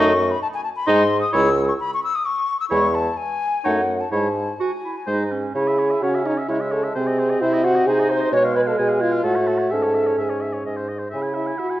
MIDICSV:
0, 0, Header, 1, 6, 480
1, 0, Start_track
1, 0, Key_signature, 4, "minor"
1, 0, Tempo, 458365
1, 1397, Time_signature, 3, 2, 24, 8
1, 3325, Tempo, 473934
1, 6205, Tempo, 460476
1, 9565, Tempo, 471328
1, 12170, End_track
2, 0, Start_track
2, 0, Title_t, "Flute"
2, 0, Program_c, 0, 73
2, 0, Note_on_c, 0, 85, 127
2, 319, Note_on_c, 0, 83, 109
2, 334, Note_off_c, 0, 85, 0
2, 430, Note_off_c, 0, 83, 0
2, 436, Note_on_c, 0, 81, 127
2, 491, Note_off_c, 0, 81, 0
2, 561, Note_on_c, 0, 80, 117
2, 660, Note_off_c, 0, 80, 0
2, 666, Note_on_c, 0, 81, 111
2, 722, Note_off_c, 0, 81, 0
2, 792, Note_on_c, 0, 83, 117
2, 900, Note_on_c, 0, 84, 127
2, 915, Note_off_c, 0, 83, 0
2, 1259, Note_off_c, 0, 84, 0
2, 1265, Note_on_c, 0, 87, 107
2, 1388, Note_off_c, 0, 87, 0
2, 1401, Note_on_c, 0, 88, 116
2, 1752, Note_off_c, 0, 88, 0
2, 1757, Note_on_c, 0, 85, 107
2, 1811, Note_off_c, 0, 85, 0
2, 1881, Note_on_c, 0, 83, 127
2, 1997, Note_off_c, 0, 83, 0
2, 2026, Note_on_c, 0, 85, 113
2, 2121, Note_off_c, 0, 85, 0
2, 2127, Note_on_c, 0, 88, 125
2, 2249, Note_on_c, 0, 87, 117
2, 2265, Note_off_c, 0, 88, 0
2, 2359, Note_on_c, 0, 85, 124
2, 2375, Note_off_c, 0, 87, 0
2, 2714, Note_off_c, 0, 85, 0
2, 2721, Note_on_c, 0, 88, 117
2, 2775, Note_off_c, 0, 88, 0
2, 2845, Note_on_c, 0, 85, 107
2, 3080, Note_on_c, 0, 81, 119
2, 3096, Note_off_c, 0, 85, 0
2, 3316, Note_on_c, 0, 80, 118
2, 3332, Note_off_c, 0, 81, 0
2, 3805, Note_on_c, 0, 78, 98
2, 3820, Note_off_c, 0, 80, 0
2, 4161, Note_on_c, 0, 81, 82
2, 4176, Note_off_c, 0, 78, 0
2, 4281, Note_off_c, 0, 81, 0
2, 4292, Note_on_c, 0, 81, 84
2, 4778, Note_on_c, 0, 80, 84
2, 4793, Note_off_c, 0, 81, 0
2, 5495, Note_off_c, 0, 80, 0
2, 5745, Note_on_c, 0, 80, 75
2, 6181, Note_off_c, 0, 80, 0
2, 6215, Note_on_c, 0, 78, 83
2, 6277, Note_off_c, 0, 78, 0
2, 6456, Note_on_c, 0, 75, 72
2, 6698, Note_on_c, 0, 76, 82
2, 6713, Note_off_c, 0, 75, 0
2, 6951, Note_on_c, 0, 81, 78
2, 6966, Note_off_c, 0, 76, 0
2, 7184, Note_on_c, 0, 80, 72
2, 7200, Note_off_c, 0, 81, 0
2, 7634, Note_off_c, 0, 80, 0
2, 7641, Note_on_c, 0, 76, 96
2, 7892, Note_on_c, 0, 78, 84
2, 7908, Note_off_c, 0, 76, 0
2, 8135, Note_on_c, 0, 80, 89
2, 8151, Note_off_c, 0, 78, 0
2, 8389, Note_on_c, 0, 84, 85
2, 8405, Note_off_c, 0, 80, 0
2, 8621, Note_on_c, 0, 85, 96
2, 8637, Note_off_c, 0, 84, 0
2, 8844, Note_off_c, 0, 85, 0
2, 8850, Note_on_c, 0, 83, 89
2, 8903, Note_off_c, 0, 83, 0
2, 8971, Note_on_c, 0, 81, 87
2, 9024, Note_off_c, 0, 81, 0
2, 9081, Note_on_c, 0, 80, 98
2, 9318, Note_off_c, 0, 80, 0
2, 9329, Note_on_c, 0, 77, 81
2, 9391, Note_off_c, 0, 77, 0
2, 9566, Note_on_c, 0, 78, 78
2, 10037, Note_off_c, 0, 78, 0
2, 10048, Note_on_c, 0, 81, 72
2, 10521, Note_off_c, 0, 81, 0
2, 10537, Note_on_c, 0, 80, 56
2, 11007, Note_off_c, 0, 80, 0
2, 11484, Note_on_c, 0, 80, 71
2, 11546, Note_off_c, 0, 80, 0
2, 11718, Note_on_c, 0, 76, 65
2, 11779, Note_off_c, 0, 76, 0
2, 11960, Note_on_c, 0, 78, 71
2, 12170, Note_off_c, 0, 78, 0
2, 12170, End_track
3, 0, Start_track
3, 0, Title_t, "Oboe"
3, 0, Program_c, 1, 68
3, 0, Note_on_c, 1, 75, 97
3, 134, Note_off_c, 1, 75, 0
3, 911, Note_on_c, 1, 75, 106
3, 1080, Note_off_c, 1, 75, 0
3, 1390, Note_on_c, 1, 73, 102
3, 1560, Note_off_c, 1, 73, 0
3, 2834, Note_on_c, 1, 73, 82
3, 3005, Note_off_c, 1, 73, 0
3, 3800, Note_on_c, 1, 73, 78
3, 3966, Note_off_c, 1, 73, 0
3, 4282, Note_on_c, 1, 73, 71
3, 4452, Note_off_c, 1, 73, 0
3, 5240, Note_on_c, 1, 72, 71
3, 5411, Note_off_c, 1, 72, 0
3, 5727, Note_on_c, 1, 73, 63
3, 5852, Note_on_c, 1, 76, 54
3, 5867, Note_off_c, 1, 73, 0
3, 5967, Note_on_c, 1, 73, 59
3, 5982, Note_off_c, 1, 76, 0
3, 6087, Note_on_c, 1, 76, 53
3, 6102, Note_off_c, 1, 73, 0
3, 6206, Note_off_c, 1, 76, 0
3, 6216, Note_on_c, 1, 73, 68
3, 6339, Note_on_c, 1, 76, 59
3, 6355, Note_off_c, 1, 73, 0
3, 6459, Note_on_c, 1, 73, 60
3, 6475, Note_off_c, 1, 76, 0
3, 6583, Note_on_c, 1, 76, 57
3, 6599, Note_off_c, 1, 73, 0
3, 6696, Note_off_c, 1, 76, 0
3, 6701, Note_on_c, 1, 73, 55
3, 6821, Note_on_c, 1, 76, 59
3, 6836, Note_off_c, 1, 73, 0
3, 6931, Note_on_c, 1, 73, 57
3, 6946, Note_off_c, 1, 76, 0
3, 7056, Note_on_c, 1, 76, 55
3, 7072, Note_off_c, 1, 73, 0
3, 7167, Note_off_c, 1, 76, 0
3, 7173, Note_on_c, 1, 72, 70
3, 7303, Note_on_c, 1, 75, 59
3, 7319, Note_off_c, 1, 72, 0
3, 7428, Note_on_c, 1, 72, 64
3, 7443, Note_off_c, 1, 75, 0
3, 7541, Note_on_c, 1, 75, 64
3, 7556, Note_off_c, 1, 72, 0
3, 7653, Note_off_c, 1, 75, 0
3, 7659, Note_on_c, 1, 72, 76
3, 7784, Note_on_c, 1, 75, 68
3, 7799, Note_off_c, 1, 72, 0
3, 7901, Note_on_c, 1, 72, 69
3, 7917, Note_off_c, 1, 75, 0
3, 8015, Note_on_c, 1, 75, 64
3, 8030, Note_off_c, 1, 72, 0
3, 8131, Note_off_c, 1, 75, 0
3, 8139, Note_on_c, 1, 72, 71
3, 8267, Note_on_c, 1, 75, 64
3, 8282, Note_off_c, 1, 72, 0
3, 8373, Note_on_c, 1, 72, 61
3, 8388, Note_off_c, 1, 75, 0
3, 8490, Note_on_c, 1, 75, 57
3, 8506, Note_off_c, 1, 72, 0
3, 8609, Note_off_c, 1, 75, 0
3, 8621, Note_on_c, 1, 80, 74
3, 8727, Note_on_c, 1, 77, 64
3, 8743, Note_off_c, 1, 80, 0
3, 8848, Note_on_c, 1, 80, 68
3, 8864, Note_off_c, 1, 77, 0
3, 8966, Note_on_c, 1, 77, 61
3, 8982, Note_off_c, 1, 80, 0
3, 9084, Note_off_c, 1, 77, 0
3, 9090, Note_on_c, 1, 80, 74
3, 9195, Note_on_c, 1, 77, 55
3, 9211, Note_off_c, 1, 80, 0
3, 9319, Note_on_c, 1, 80, 67
3, 9334, Note_off_c, 1, 77, 0
3, 9440, Note_on_c, 1, 77, 60
3, 9455, Note_off_c, 1, 80, 0
3, 9551, Note_off_c, 1, 77, 0
3, 9557, Note_on_c, 1, 69, 60
3, 9680, Note_on_c, 1, 73, 59
3, 9695, Note_off_c, 1, 69, 0
3, 9799, Note_on_c, 1, 69, 50
3, 9814, Note_off_c, 1, 73, 0
3, 9911, Note_on_c, 1, 73, 45
3, 9926, Note_off_c, 1, 69, 0
3, 10023, Note_off_c, 1, 73, 0
3, 10030, Note_on_c, 1, 76, 53
3, 10157, Note_on_c, 1, 73, 44
3, 10173, Note_off_c, 1, 76, 0
3, 10281, Note_on_c, 1, 76, 47
3, 10296, Note_off_c, 1, 73, 0
3, 10407, Note_on_c, 1, 73, 45
3, 10422, Note_off_c, 1, 76, 0
3, 10518, Note_off_c, 1, 73, 0
3, 10524, Note_on_c, 1, 76, 54
3, 10640, Note_on_c, 1, 73, 47
3, 10656, Note_off_c, 1, 76, 0
3, 10756, Note_on_c, 1, 76, 49
3, 10771, Note_off_c, 1, 73, 0
3, 10880, Note_on_c, 1, 73, 39
3, 10895, Note_off_c, 1, 76, 0
3, 11001, Note_off_c, 1, 73, 0
3, 11008, Note_on_c, 1, 75, 45
3, 11121, Note_on_c, 1, 72, 45
3, 11136, Note_off_c, 1, 75, 0
3, 11244, Note_on_c, 1, 75, 36
3, 11259, Note_off_c, 1, 72, 0
3, 11350, Note_on_c, 1, 72, 37
3, 11366, Note_off_c, 1, 75, 0
3, 11454, Note_off_c, 1, 72, 0
3, 11460, Note_on_c, 1, 76, 59
3, 11588, Note_on_c, 1, 80, 51
3, 11603, Note_off_c, 1, 76, 0
3, 11706, Note_on_c, 1, 76, 50
3, 11721, Note_off_c, 1, 80, 0
3, 11834, Note_on_c, 1, 80, 50
3, 11850, Note_off_c, 1, 76, 0
3, 11950, Note_on_c, 1, 76, 57
3, 11966, Note_off_c, 1, 80, 0
3, 12069, Note_on_c, 1, 80, 49
3, 12085, Note_off_c, 1, 76, 0
3, 12170, Note_off_c, 1, 80, 0
3, 12170, End_track
4, 0, Start_track
4, 0, Title_t, "French horn"
4, 0, Program_c, 2, 60
4, 0, Note_on_c, 2, 57, 105
4, 132, Note_off_c, 2, 57, 0
4, 929, Note_on_c, 2, 56, 100
4, 1092, Note_off_c, 2, 56, 0
4, 1402, Note_on_c, 2, 56, 97
4, 1568, Note_off_c, 2, 56, 0
4, 2842, Note_on_c, 2, 56, 82
4, 3010, Note_off_c, 2, 56, 0
4, 3810, Note_on_c, 2, 57, 84
4, 3973, Note_off_c, 2, 57, 0
4, 4278, Note_on_c, 2, 56, 69
4, 4449, Note_off_c, 2, 56, 0
4, 5245, Note_on_c, 2, 56, 65
4, 5414, Note_off_c, 2, 56, 0
4, 5738, Note_on_c, 2, 68, 88
4, 6201, Note_on_c, 2, 66, 89
4, 6216, Note_off_c, 2, 68, 0
4, 6446, Note_off_c, 2, 66, 0
4, 6451, Note_on_c, 2, 63, 91
4, 6559, Note_off_c, 2, 63, 0
4, 6688, Note_on_c, 2, 64, 88
4, 6796, Note_off_c, 2, 64, 0
4, 6939, Note_on_c, 2, 69, 80
4, 7045, Note_off_c, 2, 69, 0
4, 7174, Note_on_c, 2, 68, 92
4, 7657, Note_on_c, 2, 64, 110
4, 7673, Note_off_c, 2, 68, 0
4, 7897, Note_on_c, 2, 66, 107
4, 7913, Note_off_c, 2, 64, 0
4, 8130, Note_on_c, 2, 68, 105
4, 8145, Note_off_c, 2, 66, 0
4, 8369, Note_off_c, 2, 68, 0
4, 8381, Note_on_c, 2, 72, 106
4, 8609, Note_off_c, 2, 72, 0
4, 8614, Note_on_c, 2, 73, 115
4, 8720, Note_off_c, 2, 73, 0
4, 8861, Note_on_c, 2, 71, 95
4, 8911, Note_off_c, 2, 71, 0
4, 8971, Note_on_c, 2, 69, 90
4, 9084, Note_on_c, 2, 68, 105
4, 9100, Note_off_c, 2, 69, 0
4, 9322, Note_on_c, 2, 65, 100
4, 9337, Note_off_c, 2, 68, 0
4, 9575, Note_on_c, 2, 66, 89
4, 9590, Note_off_c, 2, 65, 0
4, 10061, Note_on_c, 2, 69, 88
4, 10076, Note_off_c, 2, 66, 0
4, 10541, Note_on_c, 2, 68, 66
4, 10556, Note_off_c, 2, 69, 0
4, 11019, Note_off_c, 2, 68, 0
4, 11485, Note_on_c, 2, 68, 77
4, 11710, Note_off_c, 2, 68, 0
4, 11721, Note_on_c, 2, 64, 65
4, 11954, Note_off_c, 2, 64, 0
4, 11960, Note_on_c, 2, 66, 78
4, 12170, Note_off_c, 2, 66, 0
4, 12170, End_track
5, 0, Start_track
5, 0, Title_t, "Clarinet"
5, 0, Program_c, 3, 71
5, 0, Note_on_c, 3, 63, 95
5, 134, Note_off_c, 3, 63, 0
5, 913, Note_on_c, 3, 63, 97
5, 1081, Note_off_c, 3, 63, 0
5, 1389, Note_on_c, 3, 64, 90
5, 1559, Note_off_c, 3, 64, 0
5, 2832, Note_on_c, 3, 64, 74
5, 3003, Note_off_c, 3, 64, 0
5, 3802, Note_on_c, 3, 63, 75
5, 3968, Note_off_c, 3, 63, 0
5, 4279, Note_on_c, 3, 64, 68
5, 4449, Note_off_c, 3, 64, 0
5, 4766, Note_on_c, 3, 66, 92
5, 4875, Note_off_c, 3, 66, 0
5, 5016, Note_on_c, 3, 64, 67
5, 5122, Note_off_c, 3, 64, 0
5, 5247, Note_on_c, 3, 63, 80
5, 5491, Note_on_c, 3, 61, 66
5, 5506, Note_off_c, 3, 63, 0
5, 5720, Note_off_c, 3, 61, 0
5, 5726, Note_on_c, 3, 64, 83
5, 6215, Note_on_c, 3, 61, 75
5, 6231, Note_off_c, 3, 64, 0
5, 6690, Note_off_c, 3, 61, 0
5, 6696, Note_on_c, 3, 56, 64
5, 7162, Note_off_c, 3, 56, 0
5, 7180, Note_on_c, 3, 60, 82
5, 8114, Note_off_c, 3, 60, 0
5, 8133, Note_on_c, 3, 63, 81
5, 8618, Note_on_c, 3, 56, 81
5, 8634, Note_off_c, 3, 63, 0
5, 9559, Note_off_c, 3, 56, 0
5, 9565, Note_on_c, 3, 57, 74
5, 10037, Note_off_c, 3, 57, 0
5, 10053, Note_on_c, 3, 61, 65
5, 11234, Note_off_c, 3, 61, 0
5, 11494, Note_on_c, 3, 64, 69
5, 12170, Note_off_c, 3, 64, 0
5, 12170, End_track
6, 0, Start_track
6, 0, Title_t, "Bassoon"
6, 0, Program_c, 4, 70
6, 0, Note_on_c, 4, 42, 107
6, 362, Note_off_c, 4, 42, 0
6, 914, Note_on_c, 4, 44, 98
6, 1315, Note_off_c, 4, 44, 0
6, 1404, Note_on_c, 4, 37, 112
6, 1801, Note_off_c, 4, 37, 0
6, 2834, Note_on_c, 4, 40, 96
6, 3241, Note_off_c, 4, 40, 0
6, 3809, Note_on_c, 4, 42, 76
6, 4204, Note_off_c, 4, 42, 0
6, 4280, Note_on_c, 4, 44, 82
6, 4686, Note_off_c, 4, 44, 0
6, 5242, Note_on_c, 4, 44, 77
6, 5647, Note_off_c, 4, 44, 0
6, 5725, Note_on_c, 4, 49, 80
6, 6148, Note_off_c, 4, 49, 0
6, 6200, Note_on_c, 4, 49, 71
6, 6629, Note_off_c, 4, 49, 0
6, 6696, Note_on_c, 4, 49, 65
6, 7115, Note_off_c, 4, 49, 0
6, 7171, Note_on_c, 4, 48, 87
6, 7591, Note_off_c, 4, 48, 0
6, 7651, Note_on_c, 4, 48, 80
6, 8073, Note_off_c, 4, 48, 0
6, 8129, Note_on_c, 4, 48, 83
6, 8552, Note_off_c, 4, 48, 0
6, 8606, Note_on_c, 4, 47, 88
6, 9029, Note_off_c, 4, 47, 0
6, 9093, Note_on_c, 4, 47, 80
6, 9513, Note_off_c, 4, 47, 0
6, 9556, Note_on_c, 4, 45, 67
6, 9985, Note_off_c, 4, 45, 0
6, 10050, Note_on_c, 4, 44, 65
6, 10475, Note_off_c, 4, 44, 0
6, 10531, Note_on_c, 4, 44, 56
6, 10957, Note_off_c, 4, 44, 0
6, 11012, Note_on_c, 4, 44, 54
6, 11437, Note_off_c, 4, 44, 0
6, 11495, Note_on_c, 4, 49, 65
6, 11890, Note_off_c, 4, 49, 0
6, 12170, End_track
0, 0, End_of_file